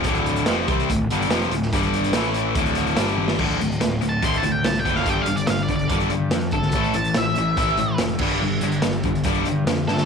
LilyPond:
<<
  \new Staff \with { instrumentName = "Lead electric guitar" } { \time 4/4 \key d \minor \tempo 4 = 143 r1 | r1 | r4 \tuplet 3/2 { r4 a''8 c'''8 a''8 g''8 a''8 g''8 f''8 } | \tuplet 3/2 { g''8 f''8 d''8 f''8 d''8 d''8 } r4. a'8~ |
a'8 a''8 e''2 r4 | r2. r8 a'8 | }
  \new Staff \with { instrumentName = "Distorted electric guitar" } { \clef bass \time 4/4 \key d \minor <d, a, d>4 <f, c f>8 <c g c'>8 <d, a,>8 <g, d g>8 <f, c f>8 <d, a,>8 | <g, d g>4 <a, e a>4 <d, a, d>4 <g, d g>4 | <d, a, d>8 <d, a,>8 <d, a,>8 <d, a,>8 <d, a, d>8 <d, a,>8 <d, a,>8 <d, a, d>8 | <g, d g>8 <g, d>8 <g, d>8 <g, d>8 <g, d g>8 <g, d>8 <g, d>8 <g, d>8 |
<a, e a>8 <a, e>8 <a, e>8 <a, e>8 <a, e a>8 <a, e>8 <a, e>8 <g, d g>8 | <g, d>8 <g, d>8 <g, d>8 <g, d>8 <g, d g>8 <g, d>8 <g, d>8 <g, d>8 | }
  \new Staff \with { instrumentName = "Overdriven electric guitar" } { \clef bass \time 4/4 \key d \minor <d, a, d>4 <f, c f>8 <c g c'>8 <d, a,>8 <g, d g>8 <f, c f>8 <d, a,>8 | <g, d g>4 <a, e a>4 <d, a, d>4 <g, d g>4 | <d, a, d>8 <d, a,>8 <d, a,>8 <d, a,>8 <d, a, d>8 <d, a,>8 <d, a,>8 <d, a, d>8 | <g, d g>8 <g, d>8 <g, d>8 <g, d>8 <g, d g>8 <g, d>8 <g, d>8 <g, d>8 |
<a, e a>8 <a, e>8 <a, e>8 <a, e>8 <a, e a>8 <a, e>8 <a, e>8 <g, d g>8 | <g, d>8 <g, d>8 <g, d>8 <g, d>8 <g, d g>8 <g, d>8 <g, d>8 <g, d>8 | }
  \new Staff \with { instrumentName = "Picked electric bass" } { \clef bass \time 4/4 \key d \minor d,,4 f,,8 c,8 d,,8 g,,8 f,,8 d,,8 | g,,4 a,,4 d,,4 g,,4 | d,,8 d,,8 d,,8 d,,8 d,,8 d,8 c,8 fis,,8 | g,,8 g,,8 g,,8 g,,8 g,,8 g,8 f,8 gis,,8 |
a,,8 a,,8 a,,8 a,,8 a,,8 a,8 f,,8 g,,8 | g,,8 g,,8 g,,8 g,,8 g,,8 g,8 f,8 g,8 | }
  \new DrumStaff \with { instrumentName = "Drums" } \drummode { \time 4/4 <hh bd>16 hh16 hh16 hh16 <hh sn>8 <hh bd>16 hh16 <hh bd>8 hh16 hh16 <hh sn>16 hh16 hh16 sn16 | <hh bd>16 hh16 hh16 hh16 <hh sn>16 hh16 hh8 <hh bd>16 hh16 hh16 hh16 <hh sn>16 hh16 tommh16 sn16 | <cymc bd>16 hh16 hh16 hh16 <hh sn>8 hh8 <hh bd>16 hh16 hh8 <hh sn>16 hh16 <hh bd>16 sn16 | <hh bd>8 hh16 hh16 <hh sn>16 hh16 <hh bd>16 hh16 <hh bd>16 hh16 hh8 <hh sn>16 hh16 <hh bd>16 sn16 |
<hh bd>16 hh16 hh16 hh16 <hh sn>8 hh8 <hh bd>16 hh16 hh8 <hh sn>16 hh16 <cymc bd>8 | r8 hh16 hh16 <hh sn>16 hh16 <hh bd>16 hh16 <hh bd>16 hh16 hh8 <hh sn>16 hh16 sn16 sn16 | }
>>